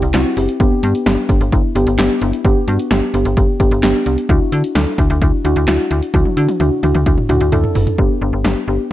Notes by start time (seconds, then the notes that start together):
0.02 C2, closed hi-hat
0.14 C2 C4 E4 F#4, snare, clap, closed hi-hat
0.37 F#1 C4 E4 G4, open hi-hat
0.49 closed hi-hat
0.60 G1 B3 D4 G4, kick, closed hi-hat
0.83 G2 B3 D4 G4, closed hi-hat
0.95 closed hi-hat
1.06 G1 B3 D4 G4, snare, closed hi-hat
1.29 G1 B3 D4 G4, kick, closed hi-hat
1.41 G1, closed hi-hat
1.52 G1 B3 D4 E4, kick, closed hi-hat
1.75 G1 B3 D4 G4, closed hi-hat
1.87 G1, closed hi-hat
1.98 G1 B3 D4 G4, snare, clap, closed hi-hat
2.22 G1 B3 D4 E4, closed hi-hat
2.33 closed hi-hat
2.45 G1 B3 D4 G4, kick, closed hi-hat
2.68 G2 B3 D4 F#4, closed hi-hat
2.79 closed hi-hat
2.91 G1 B3 D4 G4, snare, closed hi-hat
3.14 G1 B3 D4 G4, closed hi-hat
3.25 G1, closed hi-hat
3.37 G1 B3 D4 G4, kick, closed hi-hat
3.60 G1 B3 D4 G4, kick, closed hi-hat
3.71 G1, closed hi-hat
3.83 G1 B3 D4 G4, snare, clap, closed hi-hat
4.06 C2 B3 D4 G4, closed hi-hat
4.18 closed hi-hat
4.29 D2 D4 E4 F#4, kick, closed hi-hat
4.52 D3 D4 E4 F#4, closed hi-hat
4.64 closed hi-hat
4.75 D2 D4 E4 A4, snare, closed hi-hat
4.98 D2 D4 E4 F#4, kick, closed hi-hat
5.10 D2, closed hi-hat
5.22 D2 D4 E4 F#4, kick, closed hi-hat
5.45 D2 D4 E4 F#4, closed hi-hat
5.56 D2, closed hi-hat
5.68 D2 D4 E4 F#4, snare, clap, closed hi-hat
5.91 D2 D4 E4 F#4, closed hi-hat
6.02 closed hi-hat
6.14 D2 D4 E4 F#4, kick, closed hi-hat, high tom
6.25 high tom
6.37 D3 D4 E4 F#4, closed hi-hat
6.48 closed hi-hat, high tom
6.60 D2 D4 E4 F#4, closed hi-hat, mid tom
6.83 D2 D4 E4 F#4, closed hi-hat, mid tom
6.95 D2, closed hi-hat, mid tom
7.06 D2 D4 E4 F#4, kick, closed hi-hat
7.18 mid tom
7.29 D2 D4 E4 F#4, closed hi-hat, mid tom
7.41 D2, closed hi-hat
7.52 D2 D4 E4 A4, closed hi-hat, floor tom
7.64 floor tom
7.75 F#1 D4 E4 A4, floor tom, open hi-hat
7.87 closed hi-hat, floor tom
7.98 G1 B3 D4 G4, kick
8.21 G1 B3 D4 G4
8.33 G1
8.45 G1 B3 D4 G4, snare
8.68 G1 B3 D4 G4